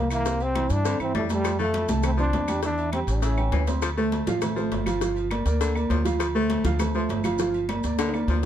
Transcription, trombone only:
0.12 0.44 A#3 loud
0.42 0.74 C4 loud
0.72 1.01 D4 loud
1.02 1.15 C4 loud
1.17 1.23 A3 medium
1.32 1.58 G3 loud
1.61 1.88 A3 loud
2.05 2.11 C4 loud
2.20 2.61 D4 loud
2.64 2.92 D4 loud
2.94 3.00 C4 loud
3.09 3.17 C#4 loud
3.16 3.25 D4 medium
3.23 3.68 C#4 medium

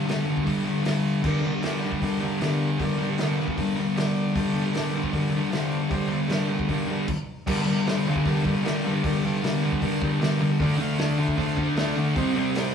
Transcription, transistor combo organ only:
1.23 1.53 D4 loud
1.23 1.54 G4 loud
1.23 1.54 A#4 loud
1.63 1.93 D4 medium
1.63 1.93 G4 medium
1.63 1.93 A#4 loud
2.01 2.31 D4 medium
2.01 2.31 G4 medium
2.01 2.32 A#4 medium
2.42 2.71 D4 medium
2.42 2.71 G4 medium
2.42 2.71 A#4 loud
2.80 3.09 D4 loud
2.80 3.09 G4 loud
2.80 3.10 A#4 loud
3.18 3.48 D4 medium
3.18 3.48 G4 medium
3.18 3.48 A#4 medium
3.56 3.86 D4 medium
3.56 3.86 G4 medium
3.56 3.87 A#4 medium
3.76 3.94 A#5 medium
3.96 4.26 D4 medium
3.96 4.26 G4 medium
3.96 4.26 A#4 medium
3.96 4.33 D5 medium
4.34 4.64 D4 loud
4.34 4.65 G4 loud
4.34 4.65 A4 loud
4.71 5.02 D4 medium
4.71 5.03 G4 medium
4.71 5.03 A#4 medium
5.11 5.42 D4 medium
5.11 5.42 G4 medium
5.11 5.43 A#4 medium
5.51 5.81 D4 medium
5.51 5.82 G4 medium
5.51 5.82 C5 loud
5.89 6.20 D4 loud
5.89 6.20 G4 loud
5.89 6.21 C5 loud
6.27 6.58 D4 medium
6.27 6.59 G4 medium
6.27 6.59 A#4 loud
6.68 6.98 D4 medium
6.68 6.98 G4 medium
6.68 6.99 A#4 medium
7.46 7.62 D4 loud
7.46 7.62 G4 loud
7.46 7.62 A#4 loud
7.66 7.81 D4 medium
7.66 7.81 G4 medium
7.66 7.82 A#4 medium
7.86 8.15 D4 medium
7.86 8.16 G4 medium
7.86 8.16 C5 medium
8.24 8.54 D4 medium
8.24 8.55 G4 medium
8.24 8.55 A#4 medium
8.62 8.93 D4 medium
8.62 8.93 G4 medium
8.62 8.94 A#4 loud
9.03 9.18 D4 loud
9.03 9.18 G4 loud
9.03 9.18 A#4 loud
9.20 9.36 D4 medium
9.20 9.37 G4 medium
9.20 9.38 A4 medium
9.42 9.72 D4 medium
9.42 9.73 G4 medium
9.42 9.73 A#4 loud
9.81 10.11 D4 medium
9.81 10.11 G4 medium
9.81 10.12 A#4 loud
10.21 10.50 D4 medium
10.21 10.51 G4 medium
10.21 10.51 A#4 medium
10.59 10.74 F4 loud
10.59 10.74 A4 loud
10.59 10.75 D5 loud
10.80 10.94 F4 medium
10.80 10.94 A4 medium
10.80 10.95 F5 medium
10.98 11.28 F4 medium
10.98 11.28 A4 medium
10.98 11.29 D5 loud
11.37 11.67 F4 medium
11.37 11.67 A4 medium
11.37 11.68 C5 medium
11.76 12.06 F4 medium
11.76 12.06 A4 medium
11.76 12.07 D5 medium
12.15 12.30 G4 loud
12.15 12.31 C5 loud
12.15 12.32 D#5 loud
12.35 12.50 G4 medium
12.35 12.51 C5 medium
12.35 12.51 D5 medium
12.55 12.75 G4 medium
12.55 12.75 C5 medium
12.55 12.75 D#5 loud

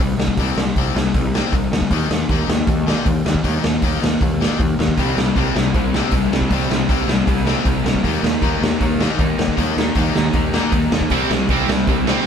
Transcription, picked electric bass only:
0.00 0.11 C2 medium
0.18 0.31 C2 medium
0.37 0.50 C2 medium
0.56 0.69 C2 medium
0.76 0.88 C2 medium
0.95 1.07 C2 medium
1.14 1.39 C2 medium
1.52 1.65 C2 medium
1.72 1.84 D2 medium
1.91 2.03 D#2 medium
2.10 2.23 D#2 medium
2.29 2.41 D#2 medium
2.48 2.61 D#2 medium
2.67 2.92 D#2 medium
3.06 3.18 D#2 medium
3.25 3.38 D#2 medium
3.44 3.56 D#2 medium
3.64 3.76 D#2 medium
3.82 3.95 D#2 medium
4.02 4.15 D#2 medium
4.21 4.46 D#2 medium
4.59 4.72 D#2 medium
4.79 4.91 D#2 medium
4.97 5.10 C2 loud
5.17 5.29 C2 medium
5.36 5.48 C2 medium
5.55 5.68 C2 medium
5.74 5.99 C2 medium
6.12 6.25 C2 medium
6.32 6.44 C2 medium
6.51 6.63 C2 loud
6.69 6.82 C2 medium
6.89 7.02 C2 medium
7.08 7.20 C2 medium
7.27 7.52 C2 medium
7.65 7.78 C2 medium
7.84 7.97 C2 medium
8.03 8.16 D#2 medium
8.23 8.36 D#2 medium
8.42 8.54 D#2 medium
8.61 8.74 D#2 medium
8.80 9.05 D#2 medium
9.19 9.31 D#2 medium
9.38 9.50 D#2 medium
9.58 9.70 D#2 medium
9.77 9.89 D#2 medium
9.95 10.08 D#2 medium
10.15 10.28 D#2 medium
10.33 10.58 D#2 medium
10.72 10.84 D#2 medium
10.92 11.04 D#2 medium
11.10 11.23 C2 loud
11.30 11.42 C2 medium
11.49 11.61 C2 medium
11.68 11.81 C2 medium
11.87 12.12 C2 medium

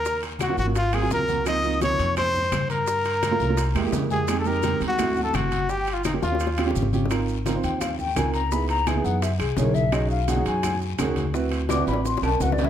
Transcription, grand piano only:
0.48 0.61 F#3 medium
0.48 0.61 A#3 medium
0.48 0.62 C#4 medium
0.48 0.62 F4 medium
0.66 0.75 F#3 medium
0.66 0.75 A#3 medium
0.66 0.76 C#4 medium
0.66 0.76 F4 medium
0.92 0.99 F#3 medium
0.92 0.99 A#3 medium
0.92 0.99 C4 medium
0.92 1.00 F4 medium
1.01 1.20 F#3 medium
1.01 1.20 A#3 medium
1.01 1.21 C4 medium
1.01 1.21 F4 medium
1.27 1.40 F#3 medium
1.27 1.41 A#3 medium
1.27 1.41 C4 medium
1.27 1.41 F#4 medium
1.46 1.58 F3 medium
1.46 1.59 A#3 medium
1.46 1.59 C4 medium
1.46 1.59 D#4 medium
1.63 1.76 F3 medium
1.63 1.76 A#3 medium
1.63 1.76 C4 medium
1.63 1.77 D#4 medium
1.80 2.31 C3 medium
1.80 2.30 F3 medium
1.80 2.31 A#3 medium
1.80 2.31 D#4 medium
3.30 3.43 A3 medium
3.30 3.44 A#3 medium
3.30 3.44 C#4 medium
3.30 3.44 F4 medium
3.48 3.57 A3 medium
3.48 3.58 A#3 medium
3.48 3.58 C#4 medium
3.48 3.58 F4 medium
3.75 3.81 G#3 medium
3.75 3.82 A#3 medium
3.75 3.82 E4 medium
3.75 3.82 G4 medium
3.84 4.03 G#3 medium
3.84 4.03 A#3 medium
3.84 4.03 E4 medium
3.84 4.03 G4 loud
4.10 4.23 G#3 medium
4.10 4.23 A#3 medium
4.10 4.24 E4 medium
4.10 4.24 G4 medium
4.29 4.41 G#3 medium
4.29 4.41 C4 medium
4.29 4.41 D#4 medium
4.29 4.42 G4 loud
4.45 4.58 G#3 medium
4.45 4.58 C4 medium
4.45 4.58 D#4 medium
4.45 4.59 G4 loud
4.63 4.99 G#3 medium
4.63 4.97 C4 medium
4.63 4.99 D#4 medium
4.63 4.99 G4 medium
4.98 5.55 A3 medium
4.98 5.55 C4 medium
4.98 5.55 E4 medium
4.98 5.56 F#4 medium
6.13 6.26 A#3 medium
6.13 6.26 C#4 medium
6.13 6.26 F4 medium
6.13 6.27 G4 medium
6.31 6.40 A#3 medium
6.31 6.40 C#4 medium
6.31 6.41 F4 medium
6.31 6.41 G4 medium
6.58 6.64 C4 medium
6.58 6.64 C#4 medium
6.58 6.65 F4 medium
6.58 6.65 G4 medium
6.66 6.85 C4 medium
6.66 6.85 C#4 medium
6.66 6.85 F4 medium
6.66 6.86 G4 loud
6.93 7.05 C4 medium
6.93 7.05 C#4 medium
6.93 7.06 F4 medium
6.93 7.06 G4 medium
7.09 7.35 C4 medium
7.09 7.35 D#4 medium
7.09 7.36 F4 medium
7.09 7.36 A#4 loud
7.46 7.52 C4 medium
7.46 7.52 D#4 medium
7.46 7.53 F4 medium
7.46 7.53 A#4 medium
7.54 7.98 C4 medium
7.54 7.98 D#4 medium
7.54 7.98 F4 medium
7.54 7.99 C5 medium
8.16 8.41 C4 medium
8.16 8.41 D#4 medium
8.16 8.42 F4 medium
8.16 8.42 A#4 medium
8.51 8.76 B3 medium
8.51 8.77 D#4 medium
8.51 8.77 E4 medium
8.51 8.77 G#4 medium
8.86 8.93 B3 medium
8.86 8.93 D#4 medium
8.86 8.94 E4 medium
8.86 8.94 G#4 medium
8.96 9.22 B3 medium
8.96 9.23 D#4 medium
8.96 9.23 E4 medium
8.96 9.23 G#4 medium
9.57 9.82 A#3 medium
9.57 9.83 D#4 medium
9.57 9.83 E4 medium
9.57 9.83 G#4 medium
9.92 10.17 C#4 medium
9.92 10.18 D#4 medium
9.92 10.18 F#4 medium
9.92 10.18 G#4 medium
10.28 10.34 C#4 medium
10.28 10.34 D#4 medium
10.28 10.35 F#4 medium
10.28 10.35 G#4 medium
10.37 10.80 C#4 medium
10.37 10.81 D#4 medium
10.37 10.81 F#4 medium
10.37 10.81 G#4 medium
10.99 11.24 C#4 medium
10.99 11.24 D#4 medium
10.99 11.24 F#4 medium
10.99 11.24 G#4 loud
11.34 11.59 C4 medium
11.34 11.59 E4 medium
11.34 11.59 F#4 medium
11.34 11.59 B4 loud
11.69 11.75 C4 medium
11.69 11.76 E4 medium
11.69 11.76 F#4 medium
11.69 11.76 B4 medium
11.78 12.21 C4 medium
11.78 12.22 E4 medium
11.78 12.22 F#4 medium
11.78 12.22 B4 medium
12.40 12.65 C4 medium
12.40 12.65 E4 medium
12.40 12.65 F#4 medium
12.40 12.65 B4 medium

